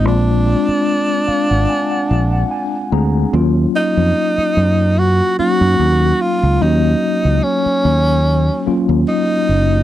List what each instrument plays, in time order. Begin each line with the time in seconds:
0.04 fingered electric bass A#1, tine electric piano G#3 C4 D4 F4, tenor saxophone D4
0.45 tine electric piano G#3 C4 D4 F4
0.68 muted fingered electric bass stroke
1.27 tine electric piano F5, muted fingered electric bass stroke
1.50 fingered electric bass G#1, tine electric piano F#5
1.69 tine electric piano G#5
1.91 tine electric piano F#5
2.11 fingered electric bass A#1
2.33 tine electric piano F#5
2.51 tine electric piano G#5
2.92 fingered electric bass D2, tine electric piano G#3 C4 D4 G#4 A#5
3.33 fingered electric bass D#2, tine electric piano F#3 A#3 C#4 F4
3.76 tenor saxophone D#4
3.97 fingered electric bass F2
4.38 muted fingered electric bass stroke
4.57 fingered electric bass F#2
4.98 tenor saxophone F#4
5.39 tine electric piano F#3 A#3 C#4 D#4, tenor saxophone F#4, muted fingered electric bass stroke
5.61 fingered electric bass F#2
5.79 fingered electric bass D#2
6.21 tenor saxophone F4
6.43 fingered electric bass C#2
6.61 fingered electric bass D#2, tine electric piano F#3 A#3 C#4 F#4, tenor saxophone D#4
7.25 fingered electric bass C#2
7.43 tenor saxophone C#4
7.66 muted fingered electric bass stroke
7.85 fingered electric bass D#2
8.66 tine electric piano F#3 A#3 C#4 F4, muted fingered electric bass stroke
8.89 fingered electric bass D#2
9.08 tenor saxophone D#4
9.49 fingered electric bass F#1